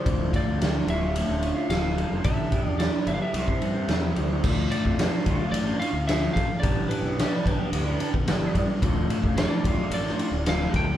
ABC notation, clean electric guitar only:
X:1
M:4/4
L:1/16
Q:1/4=110
K:Ddor
V:1 name="Clean electric guitar"
[D,,A,,D,A,F]2 [A,,D,A,F] [D,A,F] [D,,A,,D,A,F]2 [A,,D,A,F] [D,A,F] [A,,D,A,F] [D,A,F]2 [D,A,F] [D,,A,,D,A,F]2 [A,,D,A,F] [D,A,F] | [G,,D,G,B,DG]2 [G,B,DG] [G,B,DG] [G,,D,G,B,DG]2 [G,B,DG] [G,B,DG] [C,G,CEGc] [CEGc]2 [CEGc] [C,G,CEGc]2 [CEGc] [CEGc] | [D,,A,,D,A,F]3 [D,A,F] [D,,A,,D,A,F]2 [A,,D,A,F] [D,A,F]2 [D,A,F] [A,,D,A,F]2 [D,,A,,D,A,F]2 [A,,D,A,F]2 | [G,,D,G,B,DG]3 [G,B,DG] [G,,D,G,B,DG]2 [G,B,DG] [G,B,DG]2 [G,B,DG] [G,B,DG]2 [G,,D,G,B,DG]2 [G,B,DG]2 |
[D,,A,,D,A,F]3 [D,A,F] [D,,A,,D,A,F]2 [A,,D,A,F] [D,A,F]2 [D,A,F] [A,,D,A,F]2 [D,,A,,D,A,F]2 [A,,D,A,F]2 |]